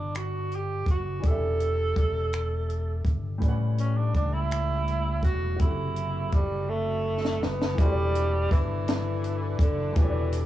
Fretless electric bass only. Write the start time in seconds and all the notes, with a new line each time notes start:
Already playing: G1
0.87 F#1
1.24 E1
1.97 E1
3.06 G1
3.43 A1
4.15 C#2
5.23 E1
5.61 F#1
6.33 F#1
7.44 F#1
7.79 E1
8.52 G1
9.60 F#1
9.97 E1